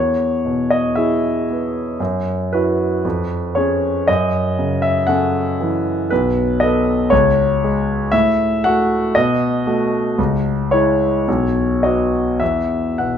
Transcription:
Already playing: E2 C#5
0.45 B2
0.70 D#5
0.95 E4 G#4 E5
1.50 B3
2.00 F#2
2.53 E4 F#4 B4
3.05 F2
3.55 C#4 G#4 C#5
4.08 F#2 D#5
4.58 C#3
4.82 E5
5.07 C#4 A4 F#5
5.61 E3
6.10 B1 B4
6.60 B3 A4 D#5
7.10 C#2 C#5
7.64 G#3 G#4
8.12 A2 E5
8.64 A3 F#4 F#5
9.15 B2 D#5
9.66 A3 F#4
10.18 C#2
10.71 G#3 E4 C#5
11.28 B1
11.83 B3 F#4 D#5
12.40 E2 E5
12.98 B2 F#5

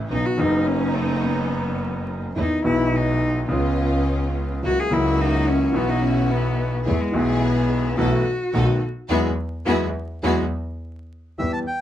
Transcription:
0.09 B1 B2 C#3 F#3 B3 C#4 D#4
0.14 D#4
0.26 F#4
0.37 F#1 F#2 C#3 F#3 B3 C#4 D#4
0.41 D#4
0.67 C#4
0.94 A3
1.24 B3
2.36 E2 D#3 E3 G#3 B3 D#4 E4
2.41 D#4
2.62 B1 B2 E3 G#3 B3 D#4 E4
2.96 D#4
3.45 C#3 D#4
3.49 C#2 G#3 B3 C#4 F4
4.62 C#2 C#3 F#3 A#3 E4 F#4
4.80 G#4
4.90 C#2 C#3 F#3 A#3 E4 F#4
5.21 D#4
5.49 C#4
5.72 B1 B2 E3 F#3 B3 E4 F#4
5.76 B3 F#4
5.89 D#4
6.02 C#4
6.31 B3
6.85 E2 E3 G#3 A3 B3 E4 G#4
7.01 G#3
7.12 B1 B2 E3 G#3 A3 B3 E4 G#4
7.16 G#4
7.42 B3
7.97 B1 B2 E3 A3 B3 E4 F#4 A4
8.53 B1 B2 D#3 A3 B3 D#4 F#4 A4
9.09 E2 E3 F#3 G#3 B3 E4 F#4 G#4
9.66 E2 E3 F#3 G#3 B3 E4 F#4 G#4
10.23 E2 E3 F#3 G#3 B3 E4 F#4 G#4
11.38 E2 E3 G3 B3 G4 E5
11.53 A5
11.67 G5

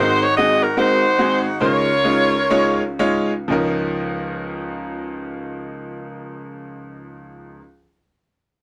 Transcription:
0.00 G#1 G#2 G#3 C4 D#4 F#4 A#4 C5
0.22 C#5
0.37 G#3 C4 D#4 F#4 G#4 D#5
0.62 A#4
0.77 G#3 C4 D#4 F#4 A#4 C5
1.19 G#3 C4 D#4 F#4 G#4
1.61 C#2 C#3 G#3 C#4 D#4 F4 A#4 C#5
2.04 G#3 C#4 D#4 F4 C#5
2.50 G#3 C#4 D#4 F4 C#5
2.99 G#3 C#4 D#4 F4 C#5
3.48 C#2 F3 C#4 D#4
3.52 A#4

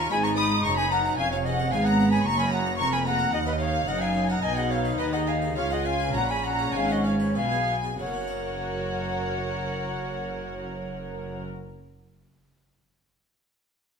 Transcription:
Already playing: D#2 F4 A#4 C#6
0.00 A#5 C#6
0.10 G#1 G#2 G#3 D#4 G#5 B5
0.24 B4 A#5 C#6
0.36 G#4 B5 D#6
0.52 D#5
0.64 F#1 F#2 G#4 A#5 C#6
0.77 B4 G#5 B5
0.91 A#4 F#5 A#5
1.05 B4
1.17 F1 F2 C#4 F5 G#5
1.31 C#5 F5
1.44 G#4 D#5 F#5
1.60 C#5
1.71 G#1 G#2 B3 G#4 F5 G#5
1.85 C#5 F#5 A#5
2.00 B4
2.12 C#5 G#5 B5
2.25 F#1 F#2 A#3 A#5 C#6
2.38 A#4 G#5 B5
2.51 F#4 F#5 A#5
2.66 C#5
2.78 F1 F2 F#4 A#5 C#6
2.92 A#4 G#5 B5
3.05 G#4 F#5 A#5
3.19 A#4
3.32 D#2 D#4 D#5 F#5
3.46 A#4 B4 D#5
3.59 D#4 C#5 F5
3.75 D#5
3.87 F#1 F#2 A#4 D#5 F#5
4.01 D#4 F5 G#5
4.15 C#4
4.29 A#4 F#5 A#5
4.43 B1 B2 D#4 D#5 G#5
4.56 G#4 D#5 F#5
4.70 D#4 C#5 F5
4.85 B4
4.98 D#2 D#3 D#4 B4 D#5
5.13 G#4 D#5 F#5
5.27 F#4 F5 G#5
5.42 G#4
5.56 C#2 C#3 F4 C#5 F5
5.70 G#4 D#5 F#5
5.85 F4 F5 G#5
6.00 B4
6.14 A#1 A#2 C#4 F4 F#5 A#5
6.29 G#4 G#5 B5
6.44 F#4 F#5 A#5
6.59 G#4
6.73 G#1 G#2 G#3 F5 G#5
6.89 G#4 D#5 F#5
7.04 F4 C#5 F5
7.20 B4
7.35 B1 B2 B3 F4 F5 G#5
7.52 G#4
7.68 F#4
7.84 G#4
7.99 F#1 F#2 F#3 F#4 A#4 C#5 F#5
8.07 A#3
8.14 C#4
8.21 F#4
8.28 C#5

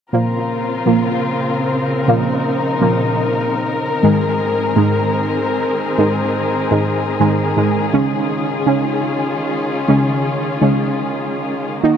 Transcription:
0.13 A#2 C#3 F3 A#3 C4 F4 A#4
0.86 A#2 F3 A#3
2.08 A#2 F3 A#3 D#4
2.81 A#2 F3 A#3
4.03 G#2 D#3 G#3 C4 G#4
4.76 G#2 D#3 G#3
5.98 G#2 D#3 G#3
6.71 G#2 D#3 G#3
7.20 G#2 D#3 G#3
7.57 G#2 D#3 G#3
7.93 C#3 G#3 C#4 F4
8.66 C#3 G#3 C#4
9.88 C#3 G#3 C#4
10.62 C#3 G#3 C#4
11.83 D#3 A#3 D#4 F#4 A#4

